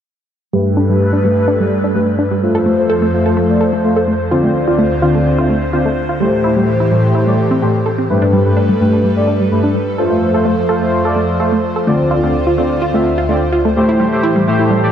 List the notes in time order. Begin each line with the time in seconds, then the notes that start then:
0.53 G2 G3 A3 G4 A4 B4
0.77 D4
0.89 G2 G3 A3 G4 B4
1.13 D4
1.24 G2 G3 A3 G4 B4
1.48 D4
1.60 G2 G3 A3 G4 D5
1.84 D4
1.95 G2 G3 A3 G4 B4
2.19 D4
2.31 G3
2.42 F2 F3 A3 F4 A4 C5
2.55 A4
2.66 A3
2.78 A3 F4 C5
2.90 A4
3.02 A3
3.13 A3 F4 C5
3.26 A4
3.37 A3
3.49 A3 F4 D5
3.61 A4
3.73 A3
3.84 A3 F4 C5
3.97 A4
4.08 A3
4.31 D2 D3 C4 F4 D5
4.44 A3
4.67 D3 C4 F4 D5
4.79 A3
5.02 D3 C4 F4 D5
5.15 A3
5.38 D3 C4 F4 E5
5.50 A3
5.73 D3 C4 F4 D5
5.86 A3
6.09 F4
6.20 A2 E3 G3 A3 G4 C5
6.44 E4
6.56 A2 G3 A3 G4 C5
6.80 E4
6.91 A2 G3 A3 G4 C5
7.15 E4
7.27 A2 G3 A3 G4 D5
7.51 C4
7.62 A2 A3 G4 C5
7.86 A4
7.98 C4
8.09 G2 G3 A3 G4 A4 B4
8.22 D4
8.33 G3
8.45 G2 A3 G4 B4
8.57 D4
8.69 G3
8.80 G2 A3 G4 B4
8.93 D4
9.04 G3
9.16 G2 A3 G4 D5
9.27 D4
9.40 G3
9.51 G2 A3 G4 B4
9.63 D4
9.75 G3
9.98 F2 F3 A3 F4 A4 C5
10.11 A3
10.34 A3 F4 A4 C5
10.45 A3
10.69 A3 F4 A4 C5
10.82 A3
11.05 A3 F4 A4 D5
11.16 A3
11.40 A3 F4 A4 C5
11.53 A3
11.76 A4
11.87 D2 D3 A3 C4 F4 D5
12.11 F4
12.23 D3 A3 C4 F4 D5
12.47 F4
12.58 D3 A3 C4 F4 D5
12.82 F4
12.94 D3 A3 C4 F4 E5
13.18 F4
13.29 D3 A3 C4 F4 D5
13.53 F4
13.65 A3
13.76 A2 E3 A3 G4 C5
13.89 E4
14.00 G3
14.12 A2 A3 G4 C5
14.23 E4
14.36 G3
14.47 A2 A3 G4 C5
14.60 E4
14.71 G3
14.83 A2 A3 G4 D5